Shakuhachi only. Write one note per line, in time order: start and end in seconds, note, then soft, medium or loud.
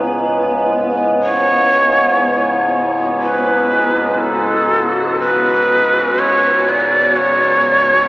1.23 2.68 C#5 loud
3.21 4.14 B4 medium
4.14 4.20 B4 medium
4.19 5.19 A4 medium
5.20 6.20 B4 medium
6.19 6.70 C#5 medium
6.69 7.18 D5 medium
7.17 8.08 C#5 loud